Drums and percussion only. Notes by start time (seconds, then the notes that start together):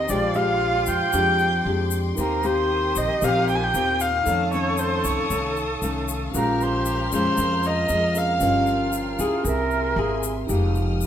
0.08 shaker
0.34 shaker
0.86 shaker
1.13 shaker
1.39 shaker
1.91 shaker
2.17 shaker
2.43 shaker
2.95 shaker
3.22 shaker
3.48 shaker
3.74 shaker
4.00 shaker
4.26 shaker
4.52 shaker
4.77 shaker
5.04 shaker
5.30 shaker
5.57 shaker
5.82 shaker
6.08 shaker
6.34 shaker
6.61 shaker
6.85 shaker
7.12 shaker
7.37 shaker
7.63 shaker
7.89 shaker
8.15 shaker
8.40 shaker
8.67 shaker
8.92 shaker
9.19 shaker
9.45 shaker
9.71 shaker
10.23 shaker
10.49 shaker
10.75 shaker
11.01 shaker